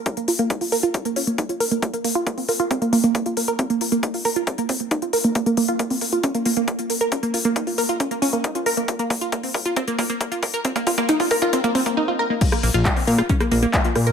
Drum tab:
CC |----------------|----------------|----------------|----------------|
HH |xxoxxooxxxoxxxox|xxoxxooxxxoxxxox|xxoxxooxxxoxxxox|xxoxxooxxxoxxxox|
CP |----------------|----------------|----------------|----------------|
SD |----------------|----------------|----------------|----------------|
BD |o---o---o---o---|o---o---o---o---|o---o---o-o-o---|o---o---o---o---|

CC |----------------|----------------|----------------|x---------------|
HH |xxoxxooxxxoxxxox|xxoxxooxxxoxxxox|xxoxxooxxxox----|xxoxxooxxxoxxxox|
CP |----------------|----------------|----------------|----x-------x---|
SD |----------------|----------------|----------------|-r-----r-r----r-|
BD |o---o---o---o---|o-o-o-o-o-o-o-o-|oooooooooooo----|o---o---o---o---|